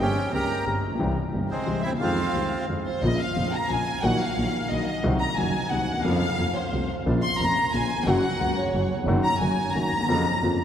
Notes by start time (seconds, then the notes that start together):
0.00 G1 G2 C#3 G3 A#3 C#4 G4 G5
0.32 C#2 C#3 G3 A#3 G4 A#4 A#5
0.66 G1 G2 C#3 G3 A#3 G4
0.83 A#1
0.87 A1
0.92 A#1 B1
0.99 C2 C3 E3 G3 C4 G4
1.33 G1 G2 E3 G3 C4 G4
1.50 G#3 C4 C5
1.66 C2 C3 E3 G3 C4 G4
1.81 D#2 E4 E5
1.86 D2 C4
1.92 D#2
1.96 E2 F2 D#3 F3 G#3 F5
2.00 F2 C4 F4
2.34 C2 C3 D#3 G#3 C4 F4
2.69 F2 D#3 F3 G#3 C4 F4
2.85 C5
3.03 A#1 A#2 C#3 F3 A#3 F4 D#5
3.19 F5
3.36 F1 F2 C#3 F3 A#3 F4
3.53 A#5
3.69 A#1 A#2 C#3 F3 A#3 F4 G#5
4.03 A#1 A#2 D#3 F#3 A#3 F#4 F#5
4.21 F5
4.37 A#1 A#2 D#3 F#3 A#3 F#4
4.70 A#1 A#2 D#3 F#3 A#3 F#4 D#5
5.03 C2 C3 D#3 F#3 C4 F#4
5.20 A#5
5.37 F#1 F#2 D#3 F#3 C4 F#4 G#5
5.70 C2 C3 D#3 F#3 C4 F#4 F#5
5.88 D2 D#2
5.97 D#2 E2
6.04 F2 C#3 F3 A#3 F4 F5
6.38 F2 C3 F3 A3 F4
6.56 C5
6.72 C2 C3 F3 A3 F4
7.06 A#1 A#2 C#3 F3 A#3 F4
7.23 C6
7.40 F1 F2 C#3 F3 A#3 F4 A#5
7.73 A#1 A#2 C#3 F3 A#3 F4 G#5
7.96 D#2 E2
8.03 F2 C#3
8.07 F#1 F#2 F#3 A#3 F#4 F#5
8.40 C#2 C#3 F#3 A#3 F#4
8.58 C#5
8.74 F#1 F#2 C#3 F#3 A#3 F#4
8.95 D#2
8.99 E2
9.04 F#1 F2 D#3 F#3
9.08 F#2 A#3 F#4
9.24 A#5
9.41 F#1 F#2 D#3 F#3 A#3 F#4 G#5
9.75 F#1 F#2 D#3 F#3 A#3 F#4 A#5
9.92 D#2
9.96 D2
10.00 D#2
10.05 E2 F2 C#3 F3 A#3 F4
10.42 F2 C#3 F3 A#3 F4